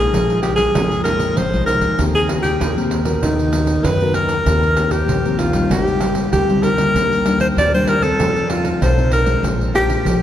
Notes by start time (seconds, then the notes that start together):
Already playing: A#2 G#3 D#4 F4 G#4
0.13 A#1 F3, pandeiro
0.30 G#3 D#4 F4, pandeiro
0.43 G4, pandeiro
0.56 G#3 D#4 F4 G#4, pandeiro
0.75 F2 A#2 G#3 D#4 F4, pandeiro
0.91 pandeiro
1.04 G#3 D#4 F4 A#4, pandeiro
1.20 pandeiro
1.37 G#1 F3 C5, pandeiro
1.53 A#1 G#3 D#4 F4, pandeiro
1.66 C2 A#4, pandeiro
1.81 D2, pandeiro
1.99 D#2 D#3 A#3 C4 G4, pandeiro
2.15 G#4, pandeiro
2.29 A#3 C4 G4, pandeiro
2.43 G4, pandeiro
2.60 D#2 A#2, pandeiro
2.77 A#3 C4 G4, pandeiro
2.91 pandeiro
3.05 B3 F#4 A#4, pandeiro
3.22 D#2 D#3 D#4, pandeiro
3.39 pandeiro
3.53 B3 F#4 A#4, pandeiro
3.67 pandeiro
3.84 F#2 D#3 B4, pandeiro
4.01 B3 F#4 A#4, pandeiro
4.14 A#4, pandeiro
4.29 pandeiro
4.46 D#2 D#3 A#3 C4 G4, pandeiro
4.63 pandeiro
4.77 A#3 C4 G4, pandeiro
4.91 G4, pandeiro
5.08 A#1 D#3, pandeiro
5.25 A#3 C4 G4, pandeiro
5.39 F4, pandeiro
5.53 G3 C4 D#4, pandeiro
5.70 G#1 G#2 G4, pandeiro
5.88 pandeiro
6.01 G3 C4 D#4, pandeiro
6.15 pandeiro
6.32 D2 G4, pandeiro
6.49 G3 C4 D#4, pandeiro
6.63 A#4, pandeiro
6.78 G3 A#3 D4, pandeiro
6.95 D#2 D#3, pandeiro
7.12 pandeiro
7.25 G3 A#3 D4, pandeiro
7.40 C5, pandeiro
7.57 D#2 A#2 D5, pandeiro
7.74 G3 A#3 D4 C5, pandeiro
7.87 A#4, pandeiro
8.02 C4 D#4 A4, pandeiro
8.19 F2 F3, pandeiro
8.36 pandeiro
8.49 C4 D#4 F4 A4, pandeiro
8.65 pandeiro
8.81 B1 C5, pandeiro
8.97 C4 D#4 A4, pandeiro
9.12 A#4, pandeiro
9.26 G#3 D4 F4, pandeiro
9.43 A#1 A#2, pandeiro
9.61 pandeiro
9.74 G#3 D4 F4 G4, pandeiro
9.90 pandeiro
10.05 A#1 F3, pandeiro